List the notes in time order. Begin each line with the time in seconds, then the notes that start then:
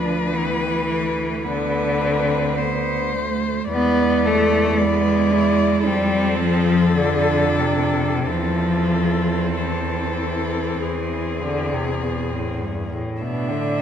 Already playing: D2 F3 D4 B4
0.33 E3 B3
0.89 A3
1.44 D3 B3 B4
2.01 C4
2.57 B3 C5
3.14 A3
3.69 E2 G#3 B3 D5
4.25 A3
4.78 G#3 B3 D5
5.32 E4
5.84 F2 G3 C4 A4
6.40 F3
6.95 D3 D4
7.59 C3
8.27 E2 F3 C4 A4
9.56 E3 A4
10.82 E2 G#4
11.43 D3
11.72 C3
12.02 B2
12.33 A2
12.62 G2
12.93 A2
13.20 A2 B2 D4 E5
13.50 D3